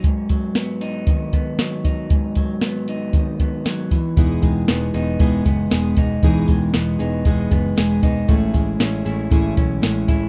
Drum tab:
HH |xxxxxxxx|xxxxxxxx|xxxxxxxx|xxxxxxxx|
SD |--o---o-|--o---o-|--o---o-|--o---o-|
BD |oo--oo-o|oo--oo-o|oo--oo-o|oo--oo-o|

HH |xxxxxxxx|
SD |--o---o-|
BD |oo--oo-o|